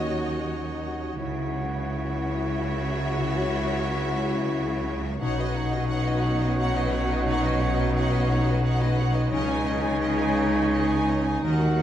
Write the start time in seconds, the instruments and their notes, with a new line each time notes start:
Already playing: double bass section D#2, cello section D#2, harp D#3 A#3 D#4 C#5, french horn section F#3 C#4, clarinet D#4, viola section F#4, oboe C#5, violin section C#5 D#5, flute section F#5
0.06 harp F#4
0.29 harp D#4
0.51 harp F#4
0.74 harp D#4
0.96 harp A#3
1.15 double bass section C#2, harp C#3, cello section C#3, french horn section F#3 E4, oboe C#5, violin section C#5, flute section F#5
1.19 clarinet E4, viola section F#4, violin section E5
1.41 harp C#5
1.63 harp F#4
1.85 harp C#4
2.07 harp F#4
2.52 harp F#4
2.74 harp C#4
2.95 harp A#3
3.18 harp C#3
3.41 harp C#5
3.63 harp F#4
3.85 harp C#4
4.08 harp F#4
4.29 harp C#4
4.53 harp F#4
4.75 harp C#4
4.98 harp A#3
5.19 double bass section B1, cello section B2, harp B2, french horn section C#4 D#4, viola section D#4, clarinet D#4, oboe C#5, violin section C#5 F#5, flute section F#5
5.38 viola section F#4, violin section B4 D#5
5.43 harp C#5
5.55 viola section D#4, violin section C#5 F#5
5.66 harp D#4
5.71 viola section F#4, violin section B4 D#5
5.88 harp F#3, viola section D#4, violin section C#5 F#5
6.05 viola section F#4, violin section B4 D#5
6.11 harp D#4
6.21 viola section D#4, violin section C#5 F#5
6.34 harp F#3
6.40 viola section F#4, violin section B4 D#5
6.57 harp D#4, viola section D#4, violin section C#5 F#5
6.75 viola section F#4, violin section B4 D#5
6.79 harp F#3
6.91 viola section D#4, violin section C#5 F#5
7.01 harp B3
7.08 viola section F#4, violin section B4 D#5
7.24 harp B2, viola section D#4, violin section C#5 F#5
7.43 viola section F#4, violin section B4 D#5
7.47 harp C#5
7.60 viola section D#4, violin section C#5 F#5
7.70 harp D#4
7.77 viola section F#4, violin section B4 D#5
7.93 harp F#3, viola section D#4, violin section C#5 F#5
8.12 viola section F#4, violin section B4 D#5
8.17 harp D#4
8.29 viola section D#4, violin section C#5 F#5
8.40 harp F#3
8.46 viola section F#4, violin section B4 D#5
8.63 harp D#4, viola section D#4, violin section C#5 F#5
8.79 viola section F#4, violin section B4 D#5
8.86 harp F#3
8.97 viola section D#4, violin section C#5 F#5
9.09 harp B3
9.14 viola section F#4, violin section B4 D#5
9.30 double bass section C#2, cello section C#3, harp C#3, french horn section C#4 D#4, viola section C#4, clarinet D#4, violin section C#5 D#5, oboe C#5, flute section G#5
9.48 viola section D#4, violin section D#5 G#5
9.54 harp C#5
9.66 viola section C#4, violin section C#5 D#5
9.77 harp D#4
9.82 viola section D#4, violin section D#5 G#5
10.00 harp C#4, viola section C#4, violin section C#5 D#5
10.19 viola section D#4, harp D#4, violin section D#5 G#5
10.35 viola section C#4, violin section C#5 D#5
10.47 harp C#4
10.55 viola section D#4, violin section D#5 G#5
10.70 viola section C#4, harp D#4, violin section C#5 D#5
10.88 viola section D#4, violin section D#5 G#5
10.94 harp C#4
11.07 viola section C#4, violin section C#5 D#5
11.19 harp G#3
11.24 viola section D#4, violin section D#5 G#5
11.43 double bass section D#2, harp D#3, timpani D#3, cello section D#3, french horn section A#3 F#4, viola section F#4, violin section A#4 D#5, oboe A#4, flute section F#5
11.51 timpani D#3
11.62 viola section D#4, violin section F#4 F#5
11.67 timpani D#3, harp F#4
11.75 timpani D#3